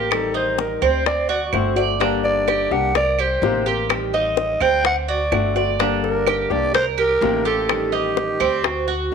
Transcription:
Already playing: upright bass A1, nylon-string guitar A#3 C4 G4, cuban tres G4
0.11 nylon-string guitar D#3 G3 C4, clarinet A4, high bongo, claves
0.34 cuban tres D#4, clarinet C5, high bongo
0.59 clarinet A#4, high bongo
0.82 upright bass D2, nylon-string guitar G3 C4, cuban tres C4, clarinet C5, high bongo, claves
1.06 clarinet D5, muted nylon-string guitar stroke, high bongo
1.29 cuban tres F#4, clarinet D5
1.46 clarinet D5
1.52 upright bass G1, nylon-string guitar D3 A3 C4 F#4, clarinet C5, high bongo, low bongo, claves
1.76 nylon-string guitar A3 C4 F#4, cuban tres D5, high bongo
1.99 nylon-string guitar D3 G3 A#3 D4 G4, cuban tres D4, high bongo
2.24 clarinet D5, high bongo
2.48 cuban tres G4, high bongo, claves
2.71 upright bass C2, nylon-string guitar G3 A#3 D4 G4, clarinet F#5, high bongo
2.95 cuban tres A#4, clarinet D5, muted nylon-string guitar stroke, high bongo
3.19 cuban tres G4, clarinet C5, claves
3.42 upright bass A1, nylon-string guitar C3 D#3 A#3 C4 G4, high bongo, low bongo
3.66 nylon-string guitar A#3 C4 G4, cuban tres G4, clarinet A#4, high bongo
3.89 nylon-string guitar D#3 G3 C4, high bongo, claves
4.14 cuban tres D#4, clarinet D#5, high bongo
4.37 high bongo
4.60 upright bass D2, nylon-string guitar G3 C4, cuban tres C4, clarinet G5, high bongo, claves
4.84 clarinet F#5, muted nylon-string guitar stroke, high bongo
5.08 cuban tres F#4, clarinet D5
5.32 upright bass G1, nylon-string guitar D3 A3 C4 F#4, high bongo, low bongo, claves
5.56 nylon-string guitar A3 C4 F#4, cuban tres D5, clarinet D5, high bongo
5.79 nylon-string guitar D3 G3 A#3 D4 G4, cuban tres D4, high bongo
6.04 clarinet A#4, high bongo
6.27 cuban tres G4, high bongo, claves
6.50 upright bass C2, nylon-string guitar G3 A#3 D4 G4, clarinet D5, high bongo
6.74 cuban tres A#4, clarinet C5, muted nylon-string guitar stroke, high bongo
6.98 cuban tres G4, clarinet A#4, claves
7.21 upright bass A1, nylon-string guitar C3 D#3 A#3 C4 G4, high bongo, low bongo
7.45 nylon-string guitar A#3 C4 G4, cuban tres G4, clarinet A4, high bongo
7.69 nylon-string guitar D#3 G3 C4, high bongo, claves
7.92 cuban tres D#4, clarinet G4, high bongo
8.17 high bongo
8.40 upright bass D2, nylon-string guitar G3 C4, cuban tres C4, high bongo, claves
8.64 clarinet F#4, muted nylon-string guitar stroke, high bongo
8.88 cuban tres F#4

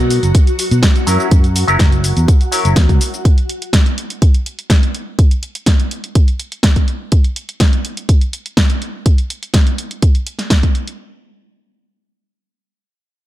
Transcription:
Already playing: fingered electric bass B2, clav F#3 B3 D#4 A#4, string machine F#4 F#5
0.10 open hi-hat, shaker
0.23 fingered electric bass F#1, closed hi-hat, shaker
0.35 kick, closed hi-hat, shaker
0.47 closed hi-hat, shaker
0.59 open hi-hat, shaker
0.71 fingered electric bass B2, closed hi-hat, shaker
0.83 kick, snare, closed hi-hat, shaker
0.96 closed hi-hat, shaker
1.07 fingered electric bass F#2, clav F#3 C#4 E4 A#4, open hi-hat, shaker
1.20 shaker
1.31 fingered electric bass F#2, kick, closed hi-hat, shaker
1.44 closed hi-hat, shaker
1.56 open hi-hat, shaker
1.68 fingered electric bass F#1, clav F#3 C#4 E4 A#4, closed hi-hat, shaker
1.79 kick, snare, closed hi-hat, shaker
1.92 closed hi-hat, shaker
2.04 open hi-hat, shaker
2.17 fingered electric bass E2, closed hi-hat, shaker
2.28 kick, closed hi-hat, shaker
2.41 closed hi-hat, shaker
2.52 clav F#3 C#4 E4 A#4, open hi-hat, shaker
2.65 fingered electric bass F#1, closed hi-hat, shaker
2.76 fingered electric bass E2, kick, snare, closed hi-hat, shaker
2.89 fingered electric bass C#2, kick, closed hi-hat, shaker
3.01 open hi-hat, shaker
3.13 shaker
3.25 kick, closed hi-hat
3.38 closed hi-hat
3.49 closed hi-hat
3.62 closed hi-hat, shaker
3.73 kick, snare, closed hi-hat
3.86 closed hi-hat
3.98 closed hi-hat
4.10 closed hi-hat
4.22 kick, closed hi-hat
4.34 closed hi-hat
4.46 closed hi-hat
4.58 closed hi-hat, shaker
4.70 kick, snare, closed hi-hat
4.83 closed hi-hat
4.95 closed hi-hat
5.07 shaker
5.19 kick, closed hi-hat
5.31 closed hi-hat
5.43 closed hi-hat
5.55 closed hi-hat, shaker
5.66 kick, snare, closed hi-hat
5.80 closed hi-hat
5.91 closed hi-hat
6.04 closed hi-hat
6.15 kick, closed hi-hat
6.28 closed hi-hat
6.40 closed hi-hat
6.52 closed hi-hat
6.63 kick, snare, closed hi-hat
6.76 kick, closed hi-hat
6.88 closed hi-hat
7.12 kick, closed hi-hat
7.24 closed hi-hat
7.36 closed hi-hat
7.49 closed hi-hat
7.60 kick, snare, closed hi-hat
7.73 closed hi-hat
7.85 closed hi-hat
7.97 closed hi-hat
8.09 kick, closed hi-hat
8.21 closed hi-hat
8.33 closed hi-hat
8.46 closed hi-hat
8.57 kick, snare, closed hi-hat
8.70 closed hi-hat
8.82 closed hi-hat
9.06 kick, closed hi-hat
9.18 closed hi-hat
9.30 closed hi-hat
9.43 closed hi-hat
9.54 kick, snare, closed hi-hat
9.67 closed hi-hat
9.78 closed hi-hat
9.91 closed hi-hat
10.02 kick, closed hi-hat
10.15 closed hi-hat
10.27 closed hi-hat
10.39 snare, closed hi-hat
10.50 kick, snare, closed hi-hat
10.63 kick, closed hi-hat
10.75 closed hi-hat
10.88 closed hi-hat

